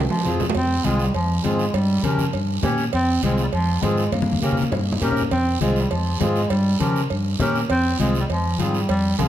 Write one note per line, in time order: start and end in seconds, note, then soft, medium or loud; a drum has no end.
0.00 low timbale loud
0.10 0.38 F3 medium
0.10 low timbale medium
0.20 low timbale medium
0.25 0.49 F2 medium
0.25 0.46 C4 medium
0.25 0.46 F4 medium
0.25 0.46 G#4 medium
0.25 low conga medium
0.25 short guiro medium
0.40 low conga medium
0.40 low timbale medium
0.40 short guiro medium
0.50 low timbale loud
0.55 0.79 F2 loud
0.55 0.86 C4 loud
0.55 cowbell loud
0.55 high conga soft
0.55 long guiro medium
0.84 1.08 C2 medium
0.84 1.06 G#3 loud
0.84 1.05 C4 medium
0.84 1.06 F4 medium
0.84 1.06 G#4 medium
0.84 cowbell medium
0.84 high conga medium
0.84 short guiro medium
0.99 short guiro medium
1.05 1.14 G3 medium
1.14 1.38 F2 loud
1.14 1.45 F3 medium
1.14 cowbell medium
1.14 long guiro medium
1.44 1.68 G#2 medium
1.44 1.76 G#3 medium
1.44 1.65 C4 medium
1.44 1.65 F4 medium
1.44 1.65 G#4 medium
1.44 cowbell medium
1.44 high conga medium
1.44 short guiro medium
1.59 short guiro medium
1.74 1.98 G2 loud
1.74 2.05 G3 loud
1.74 cowbell loud
1.74 high conga soft
1.74 long guiro medium
2.03 2.27 C#3 medium
2.03 2.34 F3 medium
2.03 2.24 C#4 medium
2.03 2.25 G4 medium
2.03 2.25 A#4 medium
2.03 cowbell medium
2.03 high conga medium
2.03 short guiro medium
2.18 low conga medium
2.18 short guiro medium
2.33 2.58 G2 medium
2.33 cowbell medium
2.33 high conga soft
2.33 long guiro medium
2.63 2.87 A#2 medium
2.63 2.84 C#4 medium
2.63 2.84 G4 medium
2.63 2.84 C#5 loud
2.63 cowbell medium
2.63 high conga medium
2.63 low conga medium
2.63 low timbale medium
2.63 short guiro medium
2.78 short guiro medium
2.93 3.17 F2 medium
2.93 3.21 C4 loud
2.93 cowbell loud
2.93 high conga soft
2.93 long guiro medium
3.23 3.47 C2 loud
3.23 3.42 G#3 loud
3.23 3.44 C4 medium
3.23 3.44 F4 medium
3.23 3.44 G#4 medium
3.23 cowbell medium
3.23 high conga medium
3.23 short guiro medium
3.38 short guiro medium
3.43 3.47 G3 medium
3.53 3.77 F2 medium
3.53 3.83 F3 medium
3.53 cowbell medium
3.53 long guiro medium
3.82 4.07 G#2 medium
3.82 4.13 G#3 medium
3.82 4.03 C4 medium
3.82 4.04 F4 medium
3.82 4.04 G#4 medium
3.82 cowbell medium
3.82 high conga medium
3.82 low timbale medium
3.82 short guiro medium
3.98 short guiro medium
4.12 4.36 G2 medium
4.12 4.41 A#3 loud
4.12 cowbell loud
4.12 high conga medium
4.12 long guiro medium
4.22 high conga medium
4.32 high conga medium
4.42 4.66 C#3 medium
4.42 4.70 A#3 medium
4.42 4.63 C#4 medium
4.42 4.63 G4 medium
4.42 4.63 A#4 medium
4.42 cowbell medium
4.42 short guiro medium
4.52 low conga medium
4.57 short guiro medium
4.62 high conga medium
4.72 4.96 G2 medium
4.72 cowbell medium
4.72 low conga medium
4.72 long guiro medium
4.92 low conga medium
5.01 5.26 A#2 medium
5.01 5.23 C#4 medium
5.01 5.23 G4 medium
5.01 5.23 A#4 medium
5.01 cowbell medium
5.01 low conga medium
5.01 short guiro medium
5.12 low conga medium
5.17 short guiro medium
5.22 low conga medium
5.31 5.56 F2 loud
5.31 5.59 C4 loud
5.31 cowbell medium
5.31 high conga soft
5.31 long guiro medium
5.61 5.85 C2 medium
5.61 5.82 G#3 loud
5.61 5.82 C4 medium
5.61 5.82 F4 medium
5.61 5.83 G#4 medium
5.61 cowbell medium
5.61 high conga medium
5.61 short guiro medium
5.76 short guiro medium
5.81 5.92 G3 medium
5.90 6.15 F2 medium
5.90 6.21 F3 medium
5.90 cowbell medium
5.90 high conga soft
5.90 long guiro medium
6.20 6.45 G#2 medium
6.20 6.51 G#3 medium
6.20 6.42 C4 medium
6.20 6.42 F4 medium
6.20 6.42 G#4 medium
6.20 cowbell medium
6.20 high conga medium
6.20 low timbale medium
6.20 short guiro medium
6.36 short guiro medium
6.50 6.74 G2 medium
6.50 6.79 G3 loud
6.50 cowbell loud
6.50 high conga soft
6.50 long guiro medium
6.79 7.04 C#3 medium
6.79 7.08 F3 medium
6.79 7.01 C#4 medium
6.79 7.01 G4 medium
6.79 7.01 A#4 medium
6.79 cowbell medium
6.79 high conga medium
6.79 short guiro medium
6.96 short guiro medium
7.10 7.34 G2 loud
7.10 cowbell medium
7.10 high conga soft
7.10 long guiro medium
7.40 7.64 A#2 medium
7.40 7.61 C#4 medium
7.40 7.61 G4 medium
7.40 7.61 A#4 loud
7.40 cowbell medium
7.40 high conga medium
7.40 low conga medium
7.40 short guiro medium
7.56 short guiro medium
7.70 7.94 F2 loud
7.70 7.98 C4 loud
7.70 cowbell loud
7.70 high conga soft
7.70 long guiro medium
7.99 8.24 C2 loud
7.99 8.18 G#3 loud
7.99 8.20 C4 medium
7.99 8.21 F4 medium
7.99 8.21 G#4 medium
7.99 cowbell medium
7.99 high conga medium
7.99 short guiro medium
8.15 short guiro medium
8.20 8.24 G3 medium
8.29 8.53 F2 medium
8.29 8.61 F3 medium
8.29 cowbell medium
8.29 high conga soft
8.29 long guiro medium
8.59 8.83 G#2 medium
8.59 8.89 G3 medium
8.59 8.80 C4 medium
8.59 8.80 F4 medium
8.59 8.80 G#4 medium
8.59 cowbell medium
8.59 high conga medium
8.59 short guiro medium
8.75 short guiro medium
8.89 9.13 F2 loud
8.89 9.17 G3 loud
8.89 cowbell loud
8.89 high conga soft
8.89 long guiro medium
9.18 9.28 C2 medium
9.18 9.28 F3 medium
9.18 9.28 C4 medium
9.18 9.28 F4 medium
9.18 9.28 G#4 medium
9.18 cowbell medium
9.18 high conga medium
9.18 high timbale medium
9.18 short guiro medium